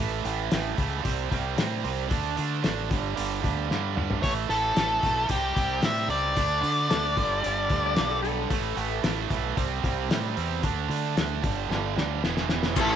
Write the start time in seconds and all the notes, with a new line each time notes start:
Already playing: A1
0.00 A2 E3 A3
0.25 A1 A2 E3 A3, open hi-hat
0.51 A1 A2 E3 A3, snare, open hi-hat
0.77 C#2 A2 E3 A3, kick, open hi-hat
1.03 C2 C3 G3 C4, kick, open hi-hat
1.30 C2 C3 G3 C4, kick, open hi-hat
1.56 A2 C3 G3 C4, snare, open hi-hat
1.84 C2 C3 G3 C4, open hi-hat
2.08 D2 D3 A3 D4, kick, open hi-hat
2.36 D3 A3 D4, open hi-hat
2.62 A1 D3 A3 D4, snare, open hi-hat
2.88 G1 G2 D3 G3, kick, open hi-hat
3.15 G1 G2 D3 G3, open hi-hat
3.42 D2 G2 D3 G3, kick, open hi-hat
3.69 G2 D3 G3, snare
3.96 G2 D3 G3, mid tom
4.10 floor tom
4.20 A1 A2 E3 A3 C#5, kick, open hi-hat
4.49 A1 A2 E3 A3 A4, open hi-hat
4.74 A1 A2 E3 A3, snare, open hi-hat
5.01 B1 A2 E3 A3, kick, open hi-hat
5.29 C2 C3 G3 C4 G4, kick, open hi-hat
5.54 C2 C3 G3 C4, kick, open hi-hat
5.81 A2 C3 G3 C4, snare, open hi-hat
5.85 E5
6.08 C#2 C3 G3 C4 D5, open hi-hat
6.36 D2 D3 A3 D4, kick, open hi-hat
6.61 D3 A3 D4, open hi-hat
6.88 D2 D3 A3 D4 A4, snare, open hi-hat
7.05 D5
7.15 G1 G2 D3 G3, kick, open hi-hat
7.43 G1 G2 D3 G3, open hi-hat
7.70 D2 G2 D3 G3, kick, open hi-hat
7.86 D5
7.96 B1 G2 D3 G3, snare, open hi-hat
8.11 A4
8.23 G2 D3 G3 A4, open hi-hat
8.50 A1 A2 E3 A3, kick, open hi-hat
8.75 A1 A2 E3 A3, open hi-hat
9.02 A1 A2 E3 A3, snare, open hi-hat
9.29 B1 A2 E3 A3, kick, open hi-hat
9.56 C2 C3 G3 C4, kick, open hi-hat
9.83 C2 C3 G3 C4, kick, open hi-hat
10.09 A2 C3 G3 C4, snare, open hi-hat
10.35 E2 C3 G3 C4, open hi-hat
10.63 D2 D3 A3 D4, kick, open hi-hat
10.88 D3 A3 D4, open hi-hat
11.16 D2 D3 A3 D4, snare, open hi-hat
11.42 G1 G2 D3 G3, kick, open hi-hat
11.69 G1 G2 D3 G3, snare
11.96 D2 G2 D3 G3, snare
12.22 E1 E2 B2 E3, snare
12.37 snare
12.49 E2 B2 E3, snare
12.63 snare
12.75 A1 A2 E3 A3 C#4 E4, kick, crash, shaker
12.81 A4